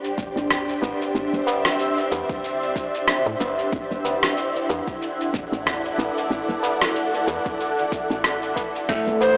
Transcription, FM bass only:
0.18 E1
0.36 A1
0.82 A1
1.15 A1
1.33 E1
2.12 E2
3.26 A2
3.40 G1
3.73 A1
3.91 E1
4.70 E2
5.34 E1
5.52 A1
5.98 A1
6.30 A1
6.49 E1
7.28 E2
8.10 A1
8.89 A1
9.07 E1

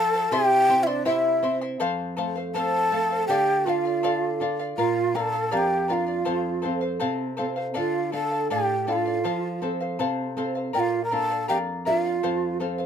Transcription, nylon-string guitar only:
Already playing: F3 F4
0.31 C3
0.69 C4
1.06 E4
1.43 C4
1.81 F2
2.18 A3
2.55 C4
2.92 A3
3.29 D3
3.66 F4
4.05 A4
4.41 F4
4.78 A#2
5.14 A#3 D4 F4
5.53 F2
5.90 D4 F4 A#4
6.27 F2
6.65 C4 F4 A4
7.02 C3
7.39 C4 F4 A4
7.77 D3
8.13 D4 F4 A4
8.50 A2
8.87 D4 F4 A4
9.25 F3
9.62 C4 F4 A4
9.99 C3
10.37 C4 F4 A4
10.75 A#2
11.12 A#3 D4 F4
11.49 F2
11.87 D4 F4 A#4
12.24 F2
12.60 C4 F4 A4

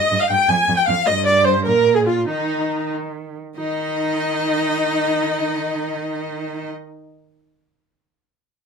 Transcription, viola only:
Already playing: D#5
0.21 F5
0.30 G5
0.49 G#5
0.77 G5
0.87 F5
1.06 D#5
1.25 D5
1.44 C5
1.65 A#4
1.94 G#4
2.06 F4
2.27 D#4
3.57 D#4

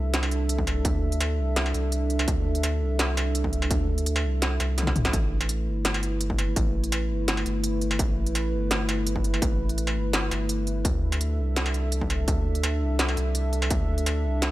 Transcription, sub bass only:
Already playing: C2
0.85 D2
1.39 C2
1.74 C2
2.28 D2
2.81 C2
3.71 D2
4.24 C2
4.60 C2
5.13 A1
5.67 G1
6.56 A1
7.10 G1
7.46 G1
7.99 A1
8.53 G1
9.42 A1
9.96 G1
10.31 G1
10.85 D2
11.38 C2
12.28 D2
12.81 C2
13.17 C2
13.71 D2
14.24 C2

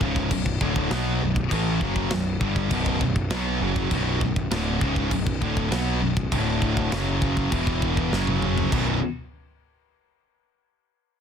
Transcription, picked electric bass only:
0.01 C#1
0.31 B0
0.61 D1
0.91 B1
1.22 B0
1.51 A1
1.81 F#1
2.12 B0
2.41 G1
2.71 B0
3.01 B0
3.31 B1
3.60 F#1
3.91 B0
4.21 B0
4.51 D1
4.81 C#1
5.11 B0
5.42 D1
5.71 B1
6.02 B0
6.32 D1
6.92 F#1
7.52 E1
8.12 F#1
8.72 B0

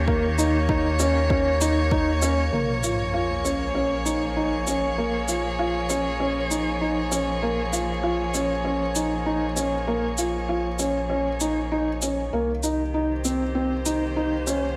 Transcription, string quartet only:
Already playing: D#3 A#3 G4 C#5
2.53 F3
3.10 G#4
12.32 D#3
12.62 G4
12.89 A#3
13.10 C5

